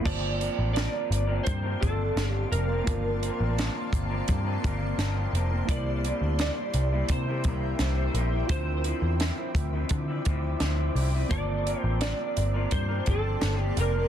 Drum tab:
CC |x-------|--------|--------|--------|
HH |-xxxxxxx|xxxxxxxx|xxxxxxxx|xxxxxxxo|
SD |--o---o-|--o---o-|--o---o-|--o---o-|
BD |o---oo--|o--ooo--|o---oo--|o--ooo--|

CC |--------|
HH |xxxxxxxx|
SD |--o---o-|
BD |o---oo--|